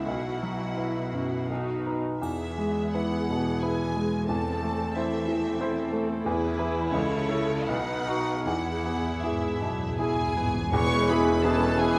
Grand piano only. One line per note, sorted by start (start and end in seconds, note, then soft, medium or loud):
0.06 1.45 B1 soft
0.43 0.99 F#3 soft
0.77 1.09 E4 soft
0.77 1.09 B4 soft
1.13 1.50 F#2 soft
1.50 2.20 B1 soft
1.87 2.19 D#4 soft
1.87 2.19 B4 soft
2.21 4.24 E2 soft
2.58 3.15 G#3 soft
2.94 3.25 E4 soft
2.94 3.25 B4 soft
3.30 3.83 B2 soft
3.63 3.93 E4 soft
3.63 3.93 B4 soft
3.96 4.29 G#3 soft
4.29 6.22 E2 soft
4.62 5.15 A3 soft
4.96 5.25 E4 soft
4.96 5.26 C5 soft
5.28 5.80 E3 soft
5.61 5.90 E4 soft
5.61 5.90 C5 soft
5.92 6.26 A3 soft
6.26 6.91 E2 medium
6.58 6.89 E4 soft
6.58 6.90 B4 soft
6.92 7.66 C#2 medium
7.29 7.65 E4 soft
7.29 7.65 A4 soft
7.68 8.43 B1 medium
8.07 8.42 D#4 soft
8.07 8.42 F#4 soft
8.47 10.69 E2 soft
8.86 9.46 B3 soft
9.23 9.57 E4 soft
9.23 9.57 G#4 soft
9.61 10.21 B2 soft
9.99 10.33 E4 soft
9.99 10.33 G#4 soft
10.36 10.73 B3 soft
10.73 11.07 E2 medium
11.09 11.40 B3 soft
11.09 11.41 E4 soft
11.09 11.41 G#4 medium
11.44 11.75 B3 soft
11.44 11.75 E4 soft
11.44 11.76 G#4 medium
11.79 11.99 B3 soft
11.79 11.99 E4 soft
11.79 11.99 G#4 soft